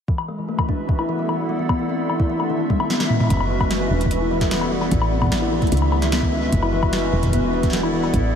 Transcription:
0.08 kalimba E3, synth texture E4 E5, kick
0.18 high woodblock
0.28 kalimba G#3
0.38 kalimba E3
0.49 kalimba A3
0.59 kalimba E3, kick, high woodblock
0.69 ambient pad B3, kalimba D4, kick
0.81 ambient pad E4 A4
0.89 kalimba E3, kick
0.99 kalimba E4, high woodblock
1.09 kalimba E3
1.19 kalimba G3
1.29 kalimba E3, high woodblock
1.49 kalimba G3
1.59 kalimba E3
1.69 kalimba B3, kick, high woodblock
1.79 kalimba E3
1.89 kalimba C4
2.05 ambient pad E5
2.10 kalimba E3, high woodblock
2.20 kalimba E4, kick
2.30 kalimba E3
2.40 kalimba A3, high woodblock
2.50 kalimba D#3, ambient pad G#3
2.59 ambient pad C#4
2.70 kalimba G#3, kick, high tom
2.80 kalimba D#3, high woodblock
2.85 ambient pad F#4 B4
2.90 kalimba B3, snare
3.00 kalimba D#3, snare
3.10 kalimba C#4, mid tom
3.20 mid tom, high woodblock
3.24 high woodblock
3.27 fm bass F#1, kalimba E3, synth texture E4 E5, kick, closed hi-hat, high woodblock
3.30 high woodblock
3.34 high woodblock
3.37 high woodblock
3.40 high woodblock
3.50 kalimba G#3
3.61 kalimba E3, kick, high woodblock
3.71 kalimba A3, snare, closed hi-hat
3.81 kalimba E3
3.91 fm bass E1, ambient pad B3, kalimba D4
4.01 ambient pad E4, closed hi-hat
4.06 kick
4.11 kalimba E3, ambient pad A4, closed hi-hat
4.21 kalimba E4
4.31 kalimba E3
4.41 kalimba G3, kick, snare, closed hi-hat
4.51 kalimba E3, snare, closed hi-hat
4.61 high woodblock
4.71 kalimba G3
4.81 kalimba E3, high woodblock
4.91 fm bass A1, kalimba B3, kick, closed hi-hat
5.02 kalimba E3, high woodblock
5.12 kalimba C4, ambient pad E5
5.22 kick, high woodblock
5.24 kick
5.27 kick
5.29 kalimba E3, kick, snare, closed hi-hat
5.42 kalimba E4
5.52 kalimba E3
5.62 kalimba A3, kick, closed hi-hat
5.67 closed hi-hat
5.72 fm bass C#2, kalimba D#3, ambient pad G#3, closed hi-hat
5.77 closed hi-hat
5.82 high woodblock
5.89 kalimba G#3, ambient pad C#4 B4, high woodblock
5.97 ambient pad F#4
6.02 kalimba D#3, snare, closed hi-hat
6.12 kalimba B3, snare, closed hi-hat
6.22 kalimba D#3, kick
6.32 kalimba C#4
6.53 fm bass F#1, kalimba E3, kick, closed hi-hat
6.63 kalimba E4, high woodblock
6.73 kalimba E3
6.83 kalimba G#3, kick, high woodblock
6.93 kalimba E3, snare, closed hi-hat
7.13 fm bass E1, kalimba G3, ambient pad B3
7.20 kalimba E3, ambient pad E4, kick, closed hi-hat
7.26 kick
7.30 kick, closed hi-hat
7.33 kalimba B3, kick
7.36 kick
7.40 kalimba E3, ambient pad D5, kick
7.53 kalimba D4
7.63 kick, snare, closed hi-hat
7.70 snare
7.73 kalimba E3, snare, closed hi-hat
7.77 snare
7.83 kalimba E4, high woodblock
7.93 kalimba E3
8.04 kalimba G3, high woodblock
8.14 fm bass A1, kalimba E3, kick, closed hi-hat

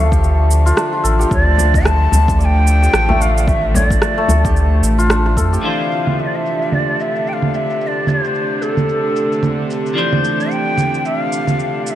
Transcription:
Already playing: sub bass D2, string section D3 F3, santur A3 D4 G4 A4 D5, ney F5
0.12 santur G4, kick, cabasa
0.24 cabasa
0.51 cabasa
0.66 santur F4, cabasa
0.77 santur D4, cross-stick, cabasa
0.93 santur F4
1.04 sub bass A1, santur A4, cabasa
1.19 santur G4, cabasa
1.31 sub bass D2, string section A3, ney D5, kick, cabasa
1.58 frame drum, cabasa
1.74 kick, cabasa
1.85 santur D4, ney A5, cross-stick, cabasa
2.12 sub bass D2, frame drum, cabasa
2.28 kick, cabasa
2.39 santur D5, ney A5, cabasa
2.45 ney G5
2.67 cabasa
2.82 santur G4, cabasa
2.93 sub bass A1, santur D4, cross-stick, cabasa
3.09 santur A3, frame drum
3.20 santur D4, ney F5, cabasa
3.38 cabasa
3.48 ney E5, kick, cabasa
3.74 ney C#5, santur D5, frame drum, cabasa
3.87 ney D5, kick
3.92 cabasa
4.02 cross-stick, cabasa
4.18 santur A3
4.28 sub bass D2, santur A4, frame drum, cabasa
4.45 santur G4, kick, cabasa
4.57 cabasa
4.82 sub bass A1, cabasa
4.98 santur F4, cabasa
5.10 santur D4, cross-stick, cabasa
5.26 santur F4, cross-stick
5.37 sub bass F2, santur A4, kick, cabasa
5.53 santur G4, cabasa
5.61 string section C3 D3 A3 D4, clean electric guitar E3 F3 D4 C5, ney F5, cabasa
5.92 cabasa
6.07 low conga, cabasa
6.19 ney E5, cabasa
6.26 ney D5
6.35 ney E5
6.46 cabasa
6.62 cabasa
6.72 ney D5, low conga, cabasa
7.00 ney E5, cabasa
7.16 cabasa
7.27 ney G5, cabasa
7.33 ney F5
7.42 low conga
7.54 ney E5, cabasa
7.70 cabasa
7.81 ney E5, cabasa
7.87 ney D5
8.07 ney C5, low conga, cabasa
8.24 cabasa
8.35 cabasa
8.62 ney A4, cabasa
8.77 low conga, cabasa
8.89 cabasa
9.16 cabasa
9.32 cabasa
9.43 low conga, cabasa
9.70 cabasa
9.86 cabasa
9.94 clean electric guitar E3 F3 D4, cabasa
9.98 ney C5, clean electric guitar C5
10.13 low conga
10.24 cabasa
10.40 cabasa
10.51 ney G5, cabasa
10.78 low conga, cabasa
10.94 cabasa
10.99 ney G5
11.05 ney E5, cabasa
11.22 ney F5
11.32 cabasa
11.48 low conga, cabasa
11.60 cabasa
11.86 ney F5, cabasa
11.91 ney E5

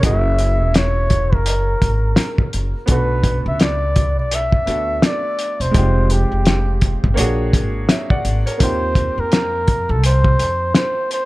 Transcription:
0.00 upright bass F#1, grand piano A#3 C#4 E4, kick, closed hi-hat
0.05 grand piano F#4 G#4, muted trumpet E5
0.39 closed hi-hat
0.61 upright bass E1
0.74 muted trumpet C#5, snare, closed hi-hat
1.10 kick, closed hi-hat
1.33 upright bass F#1, muted trumpet A#4, kick
1.46 closed hi-hat
1.82 upright bass G#1, kick, closed hi-hat
2.16 snare, closed hi-hat
2.38 kick
2.53 upright bass F#1, closed hi-hat
2.86 upright bass B1, grand piano A3 B3 D4, kick, closed hi-hat
2.91 grand piano F#4 A4, muted trumpet B4
3.24 kick, closed hi-hat
3.46 upright bass C#2, muted trumpet E5
3.60 muted trumpet D5, snare, closed hi-hat
3.96 kick, closed hi-hat
4.17 upright bass B1, muted trumpet D5
4.31 muted trumpet E5, closed hi-hat
4.52 kick
4.66 upright bass D2, grand piano A3 B3 D4 F#4 A4, closed hi-hat
5.02 muted trumpet D5, snare, closed hi-hat
5.39 closed hi-hat
5.60 upright bass E1, muted trumpet C5, closed hi-hat
5.71 upright bass F1, grand piano G#3 C4 D#4, kick, closed hi-hat
5.76 grand piano F4 G4
6.10 muted trumpet G4, closed hi-hat
6.32 upright bass F1
6.46 snare, closed hi-hat
6.81 kick, closed hi-hat
7.04 upright bass G1, kick
7.14 upright bass A#1, grand piano A#3 D4 C#5, closed hi-hat
7.19 grand piano F#4 G#4
7.53 upright bass G#1, kick, closed hi-hat
7.89 grand piano C#5 E5, snare, closed hi-hat
8.10 grand piano D5 F#5, kick
8.25 upright bass G#1, closed hi-hat
8.46 grand piano A#4 C#5, closed hi-hat
8.58 upright bass D#2, grand piano A#3 C4 D#4, kick, closed hi-hat
8.62 grand piano F4 G4, muted trumpet C5
8.95 kick, closed hi-hat
9.18 upright bass F2, muted trumpet A#4
9.32 snare, closed hi-hat
9.68 kick, closed hi-hat
9.89 upright bass C2, muted trumpet A4
10.04 muted trumpet C5, closed hi-hat
10.24 kick
10.39 upright bass F2, closed hi-hat
10.75 muted trumpet C5, snare, closed hi-hat
11.11 muted trumpet C5, closed hi-hat

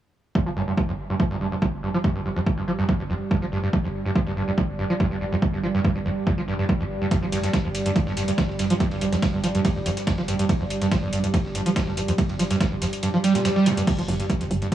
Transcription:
0.35 ambient pad G2 G3, acid bass G2, kick
0.46 acid bass F3
0.56 acid bass G2
0.67 acid bass G2
0.77 acid bass G2, kick
0.89 acid bass F2
1.10 acid bass G2
1.20 acid bass F3, kick
1.31 acid bass G2
1.41 acid bass G2
1.52 acid bass G2
1.62 acid bass F2, kick
1.83 acid bass G2
1.94 acid bass F3
2.04 acid bass G2, kick
2.15 acid bass G2
2.25 acid bass G2
2.36 acid bass F2
2.46 kick
2.58 acid bass G2
2.68 acid bass F3
2.79 acid bass G2
2.89 acid bass G2, kick
3.00 acid bass G2
3.10 acid bass F2
3.31 acid bass G2, kick
3.42 acid bass F3
3.52 acid bass G2
3.63 acid bass G2
3.73 acid bass G2, kick
3.84 acid bass F2
4.05 acid bass G2
4.15 acid bass F3, kick
4.27 acid bass G2
4.37 acid bass G2
4.48 acid bass G2
4.58 acid bass F2, kick
4.79 acid bass G2
4.90 acid bass F3
5.00 acid bass G2, kick
5.11 acid bass G2
5.21 acid bass G2
5.32 acid bass F2
5.42 kick
5.53 acid bass G2
5.63 acid bass F3
5.74 acid bass G2
5.84 acid bass G2, kick
5.96 acid bass G2
6.06 acid bass F2
6.27 acid bass G2, kick
6.38 acid bass F3
6.48 acid bass G2
6.59 acid bass G2
6.69 acid bass G2, kick
6.80 acid bass F2
7.01 acid bass G2
7.11 acid bass G2, kick, closed hi-hat, ride
7.22 acid bass F3
7.32 acid bass G2, closed hi-hat, ride
7.43 acid bass G2, snare, closed hi-hat
7.53 acid bass G2, kick, snare, closed hi-hat, ride
7.65 acid bass F2
7.75 closed hi-hat, ride
7.86 acid bass G2, closed hi-hat
7.96 acid bass F3, kick, closed hi-hat, ride
8.07 acid bass G2, snare
8.17 acid bass G2, closed hi-hat, ride
8.28 acid bass G2, closed hi-hat
8.38 acid bass F2, kick, snare, closed hi-hat, ride
8.49 snare
8.59 acid bass G2, closed hi-hat, ride
8.70 acid bass F3, closed hi-hat
8.80 acid bass G2, kick, closed hi-hat, ride
8.91 acid bass G2, ride
9.01 acid bass G2, closed hi-hat, ride
9.12 acid bass F2, snare, closed hi-hat
9.22 kick, snare, closed hi-hat, ride
9.34 acid bass G2
9.44 acid bass F3, snare, closed hi-hat, ride
9.55 acid bass G2, closed hi-hat
9.65 acid bass G2, kick, closed hi-hat, ride
9.76 acid bass G2
9.86 acid bass F2, closed hi-hat, ride
9.97 snare, closed hi-hat
10.07 acid bass G2, kick, snare, closed hi-hat, ride
10.18 acid bass F3, snare
10.28 acid bass G2, closed hi-hat, ride
10.39 acid bass G2, closed hi-hat
10.49 acid bass G2, kick, closed hi-hat, ride
10.60 acid bass F2
10.70 closed hi-hat, ride
10.82 acid bass G2, snare, closed hi-hat
10.91 acid bass F3, kick, snare, closed hi-hat, ride
11.03 acid bass G2
11.13 acid bass G2, closed hi-hat, ride
11.24 acid bass G2, closed hi-hat
11.34 acid bass F2, kick, closed hi-hat, ride
11.45 snare
11.55 acid bass G2, closed hi-hat, ride
11.66 acid bass F3, closed hi-hat
11.76 acid bass G2, kick, snare, closed hi-hat, ride
11.87 acid bass G2, snare
11.97 acid bass G2, closed hi-hat, ride
12.08 acid bass F2, closed hi-hat
12.18 kick, closed hi-hat, ride
12.29 acid bass G2, ride
12.39 acid bass F3, closed hi-hat, ride
12.51 acid bass G2, snare, closed hi-hat
12.60 acid bass G2, kick, snare, closed hi-hat, ride
12.72 acid bass G2
12.82 acid bass F2, snare, closed hi-hat, ride
12.93 closed hi-hat
13.03 acid bass G2, closed hi-hat, ride, swell
13.14 acid bass F3
13.24 acid bass G3, closed hi-hat, ride
13.35 acid bass A#2, snare, closed hi-hat
13.45 acid bass G2, snare, closed hi-hat, ride
13.56 acid bass G3, snare
13.66 acid bass G2, closed hi-hat, ride
13.77 acid bass G2, closed hi-hat
13.87 acid bass G2, ambient pad G2 G3, kick, closed hi-hat, crash
13.98 acid bass F3, closed hi-hat
14.08 analog synth bass G1, acid bass G2, open hi-hat
14.20 acid bass G2, closed hi-hat
14.30 acid bass G2, kick, closed hi-hat
14.41 acid bass F2, closed hi-hat
14.51 analog synth bass G1, open hi-hat
14.62 acid bass G2, closed hi-hat

